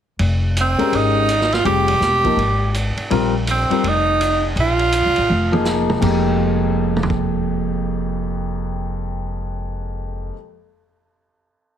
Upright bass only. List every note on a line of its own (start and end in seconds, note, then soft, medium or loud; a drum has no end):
0.19 0.75 F1 medium
0.80 muted upright bass stroke soft
0.92 1.62 G#1 medium
1.65 1.99 F1 medium
2.00 2.35 E1 medium
2.36 2.93 G#1 medium
2.97 muted upright bass stroke soft
3.10 3.66 A#1 medium
3.84 4.53 F1 medium
4.56 5.01 A#1 medium
5.06 5.17 C2 medium
5.18 5.29 A1 medium
5.29 5.98 F1 medium
6.01 10.29 F1 medium